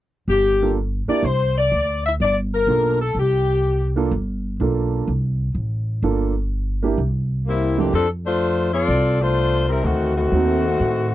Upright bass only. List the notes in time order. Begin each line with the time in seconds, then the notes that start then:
0.28 G1
1.08 muted upright bass stroke
1.23 C2
1.72 D2
2.20 G1
2.67 B1
3.15 C2
4.11 G1
4.60 B1
5.08 C2
5.55 A1
6.02 G1
6.98 C2
7.93 F2
8.88 C2
9.83 D2
10.32 D#2
10.80 A2